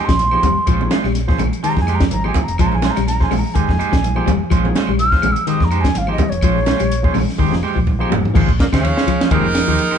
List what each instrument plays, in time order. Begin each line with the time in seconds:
Already playing: clean electric guitar G#3 D#4 G4 C5
0.05 fingered electric bass A#1, clean electric guitar F3, flute C6, kick, snare, closed hi-hat
0.19 closed hi-hat, high conga
0.31 reed electric piano F3 A#3 D#4 G#4, clean electric guitar D#4 G4 C5, claves
0.43 fingered electric bass F1, clean electric guitar G3, kick, closed hi-hat, high conga, low conga
0.66 fingered electric bass A#1, clean electric guitar F3 G#3 C#4 F4 C5, kick, closed hi-hat, claves
0.80 reed electric piano F3 A#3 D#4 G#4, low conga
0.91 clean electric guitar G#3 C#4 F4 C5, snare, closed hi-hat, high conga
1.04 fingered electric bass A#1, clean electric guitar G3, snare, claves
1.15 snare, closed hi-hat
1.28 reed electric piano F3 A#3 D#4 G#4, clean electric guitar C#4 C5, muted clean electric guitar stroke, kick, snare
1.39 fingered electric bass A#1, clean electric guitar G#3, closed hi-hat, high conga, low conga, claves
1.53 closed hi-hat
1.63 clean electric guitar D#3 G#3 D#4 G4 C5, flute A#5, muted fingered electric bass stroke, closed hi-hat
1.75 fingered electric bass F2, reed electric piano F3 A#3 D#4 G#4, kick, snare, high conga
1.81 flute G#5
1.87 clean electric guitar G#3 G4 C5, muted clean electric guitar stroke, closed hi-hat, claves
1.95 flute A#5
2.00 clean electric guitar F3, kick, snare, closed hi-hat
2.11 fingered electric bass G#1, flute A#5, closed hi-hat, high conga
2.24 reed electric piano F3 A#3 D#4 G#4, clean electric guitar D#4 G4 C5, flute G#5, claves
2.34 kick, closed hi-hat, high conga, low conga
2.44 flute A#5
2.48 fingered electric bass F1, closed hi-hat
2.58 fingered electric bass A#1, clean electric guitar F3 G#3 C#4 F4 C5, flute A#5, kick, closed hi-hat, claves
2.72 reed electric piano F3 A#3 D#4 G#4, flute G#5, high conga
2.82 clean electric guitar G#3 C#4 F4 C5, snare, closed hi-hat, high conga
2.91 flute A#5
2.97 fingered electric bass A#1, clean electric guitar G3, snare, closed hi-hat, claves
3.07 flute A#5, snare, closed hi-hat, high conga
3.20 reed electric piano F3 A#3 D#4 G#4, clean electric guitar C#4 F4 C5, flute G#5, kick, snare
3.31 fingered electric bass A#1, clean electric guitar G#3, open hi-hat, high conga, low conga, claves
3.39 flute A#5
3.54 fingered electric bass F1, clean electric guitar D#3 G#3 D#4 G4 C5, flute G#5, kick, closed hi-hat
3.68 fingered electric bass F1, reed electric piano F3 A#3 D#4 G#4, kick, snare, high conga
3.78 clean electric guitar G#3 D#4 G4 C5, closed hi-hat, claves
3.92 fingered electric bass A#1, clean electric guitar F3, kick, snare, closed hi-hat
4.03 closed hi-hat, high conga
4.15 reed electric piano F3 A#3 D#4 G#4, clean electric guitar G4 C5, muted clean electric guitar stroke, claves
4.26 fingered electric bass F1, clean electric guitar G3, kick, closed hi-hat, high conga, low conga
4.50 fingered electric bass A#1, clean electric guitar F3 G#3 C#4 F4 C5, kick, closed hi-hat, claves
4.64 reed electric piano F3 A#3 D#4 G#4, high conga, low conga
4.75 clean electric guitar G#3 C#4 F4 C5, snare, closed hi-hat, high conga
4.87 fingered electric bass A#1, clean electric guitar G3, claves
4.99 flute F6, closed hi-hat, high conga
5.12 reed electric piano F3 A#3 D#4 G#4, clean electric guitar C#4 F4 C5, kick, snare
5.22 fingered electric bass A#1, clean electric guitar G#3, closed hi-hat, high conga, low conga, claves
5.32 flute E6
5.36 closed hi-hat
5.47 clean electric guitar D#3 G#3 D#4 G4 C5, flute D#6, muted fingered electric bass stroke, closed hi-hat
5.59 fingered electric bass F2, reed electric piano F3 A#3 D#4 G#4, kick, snare
5.64 flute A#5
5.71 clean electric guitar G#3 D#4 G4 C5, closed hi-hat, claves
5.81 clean electric guitar F3, flute G#5, kick, snare, closed hi-hat
5.95 fingered electric bass G#1, flute F5, snare, closed hi-hat, high conga
6.07 reed electric piano F3 A#3 D#4 G#4, clean electric guitar D#4 G4 C5, claves
6.12 flute D#5
6.18 clean electric guitar G3, kick, closed hi-hat, high conga, low conga
6.29 fingered electric bass F1, flute C#5, closed hi-hat
6.41 fingered electric bass A#1, clean electric guitar F3 G#3 C#4 F4 C5, kick, closed hi-hat, claves
6.55 reed electric piano F3 A#3 D#4 G#4
6.66 clean electric guitar G#3 C#4 F4 C5, snare, closed hi-hat, high conga
6.79 fingered electric bass A#1, clean electric guitar G3, closed hi-hat, claves
6.92 closed hi-hat
7.03 reed electric piano F3 A#3 D#4 G#4, clean electric guitar C#4 F4 C5, kick
7.14 fingered electric bass A#1, clean electric guitar G#3, open hi-hat, high conga, low conga, claves
7.29 snare
7.38 fingered electric bass F1, clean electric guitar D#3 G#3 D#4 G4 C5, kick
7.50 fingered electric bass F1, reed electric piano F3 A#3 D#4 G#4, snare
7.63 clean electric guitar G#3 G4 C5, muted clean electric guitar stroke, claves
7.75 fingered electric bass A#1, clean electric guitar F3, kick
7.87 kick, high conga
7.99 reed electric piano F3 A#3 D#4 G#4, clean electric guitar D#4 G4 C5, claves
8.10 fingered electric bass F1, clean electric guitar G3, floor tom, high conga, low conga
8.25 floor tom
8.34 fingered electric bass A#1, clean electric guitar D#3 G#3 C#4 F4 C5, reed electric piano F3 A#3 D#4 G#4, kick, crash, claves
8.49 kick
8.59 tenor saxophone A#2, trumpet A#3, kick, snare, ride bell
8.71 fingered electric bass D#2, clean electric guitar C#3 C#4 F4 C5, tenor saxophone C#3, trumpet C#4, reed electric piano D#4 G#4, kick, snare, ride bell, claves
8.82 reed electric piano F3 A#3 D#4 G#4, ride bell
8.97 clean electric guitar C#4 F4 C5, snare
9.06 fingered electric bass C#2, clean electric guitar F3, ride bell, claves
9.19 reed electric piano F3 A#3 D#4 G#4, clean electric guitar C#4 F4 C5, snare, ride bell
9.30 fingered electric bass F1, clean electric guitar D#3 G#3 D#4 G4 C5, tenor saxophone D#3, reed electric piano F3 A#3 D#4 G#4, trumpet D#4, kick, ride bell
9.54 snare, ride bell, claves
9.67 fingered electric bass D#2, clean electric guitar F3 D#4 G4 C5, snare
9.79 ride bell
9.91 clean electric guitar D#4 G4 C5, muted fingered electric bass stroke, claves